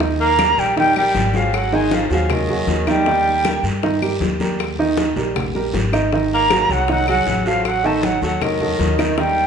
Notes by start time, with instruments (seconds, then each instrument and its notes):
Already playing: upright bass D#2
0.00 upright piano D#3 D#4 D#5, high bongo, high conga, long guiro
0.20 tenor saxophone A#3, flute A#5, high conga
0.39 upright piano G3 G4 A#4, high bongo, high conga, short guiro, claves
0.57 upright bass A#1, tenor saxophone G3, flute G5, high bongo, high conga, short guiro
0.77 upright piano D#3 D#4 D#5, tenor saxophone G3, flute G5, high bongo, high conga, long guiro
0.96 upright piano G3 G4 A#4, tenor saxophone G3, flute G5, high bongo, high conga, claves
1.14 upright bass G#1, high bongo, low bongo, high conga, short guiro
1.34 tenor saxophone F3, upright piano F#3 F#4 G#4, flute F5, high bongo, high conga, short guiro
1.53 tenor saxophone F#3, flute F#5, high bongo, high conga, long guiro, claves
1.72 upright piano D#3 D#4 D#5, tenor saxophone G#3, flute G#5, high conga
1.91 tenor saxophone F3, flute F5, high bongo, high conga, short guiro
2.10 upright bass D#2, tenor saxophone F3, upright piano F#3 F#4 G#4, flute F5, high bongo, high conga, short guiro
2.30 tenor saxophone D#3, flute D#5, high bongo, high conga, low conga, long guiro, claves
2.49 upright piano F#3 F#4 G#4, high bongo, high conga, low conga
2.67 upright bass D#2, high bongo, low bongo, high conga, short guiro
2.87 upright piano D#3 D#4 D#5, tenor saxophone G3, flute G5, high bongo, high conga, short guiro, claves
3.06 upright piano D#3 D#4 D#5, high bongo, high conga, long guiro
3.26 high conga
3.44 upright piano G3 G4 A#4, high bongo, high conga, short guiro, claves
3.63 upright bass G2, high bongo, high conga, short guiro
3.83 upright piano D#3 D#4 D#5, high bongo, high conga, long guiro
4.02 upright piano G3 G4 A#4, high bongo, high conga, claves
4.20 upright bass D#2, high bongo, low bongo, high conga, short guiro
4.40 upright piano G3 G4 A#4, high bongo, high conga, short guiro
4.59 high bongo, high conga, long guiro, claves
4.78 upright piano D#3 D#4 D#5, high conga
4.97 high bongo, high conga, short guiro
5.16 upright bass A#1, upright piano G3 G4 A#4, high bongo, high conga, short guiro
5.36 high bongo, high conga, low conga, long guiro, claves
5.55 upright piano G3 G4 A#4, high bongo, high conga
5.74 upright bass G#1, high bongo, low bongo, high conga, short guiro
5.93 upright piano D#3 D#4 D#5, high bongo, short guiro, claves
6.12 upright piano D#3 D#4 D#5, high bongo, high conga, long guiro
6.31 tenor saxophone A#3, flute A#5, high conga
6.50 upright piano F#3 F#4 G#4, high bongo, high conga, short guiro, claves
6.69 upright bass C2, tenor saxophone F#3, flute F#5, high bongo, high conga, short guiro
6.88 upright piano D#3 D#4 D#5, tenor saxophone F#3, flute F#5, high bongo, high conga, long guiro
7.07 tenor saxophone F#3, upright piano F#3 F#4 G#4, flute F#5, high bongo, high conga, claves
7.26 upright bass A1, high bongo, low bongo, high conga, short guiro
7.46 tenor saxophone F3, upright piano F#3 F#4 A4, flute F5, high bongo, short guiro
7.65 tenor saxophone F#3, flute F#5, high bongo, high conga, long guiro, claves
7.84 upright piano D#3 D#4 D#5, tenor saxophone A3, flute A5, high conga
8.03 tenor saxophone F#3, flute F#5, high bongo, high conga, short guiro
8.22 upright bass D#2, tenor saxophone F#3, upright piano F#3 F#4 A4, flute F#5, high bongo, high conga, short guiro
8.41 tenor saxophone D#3, flute D#5, high bongo, high conga, low conga, long guiro, claves
8.60 upright piano F#3 F#4 A4, high bongo, high conga, low conga
8.79 upright bass D#2, high bongo, low bongo, high conga, short guiro
8.98 upright piano D#3 D#4 D#5, high bongo, high conga, short guiro, claves
9.17 upright piano D#3 D#4 D#5, tenor saxophone G3, flute G5, high bongo, high conga, long guiro
9.37 high conga